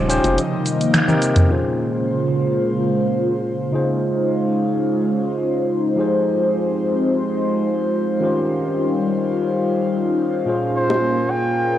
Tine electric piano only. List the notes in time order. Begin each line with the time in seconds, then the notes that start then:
Already playing: C#4 F4 G4 C5
0.08 C#4 F4 G4 C5
1.07 C4 D#4 G4 A#4
1.47 A#2 C#4 F4 G#4
1.52 C5
3.71 C#3 D#4 F4 G#4
3.76 C5
5.96 F3 D#4 G4 G#4
6.00 C5
8.20 D#3 C#4 F4 G4 A#4
8.25 C5
10.45 A#2 C#4 F4 G#4
10.49 C5